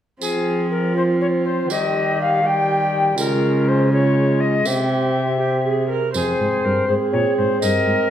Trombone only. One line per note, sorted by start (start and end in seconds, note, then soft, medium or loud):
0.20 0.91 C4 medium
0.95 1.71 C4 medium
1.69 2.43 G3 medium
2.44 3.16 G3 medium
3.19 3.88 G#3 medium
3.91 4.68 G#3 medium
4.66 5.90 C4 medium
6.14 6.85 C4 medium
6.88 7.61 C4 medium
7.62 8.10 C4 medium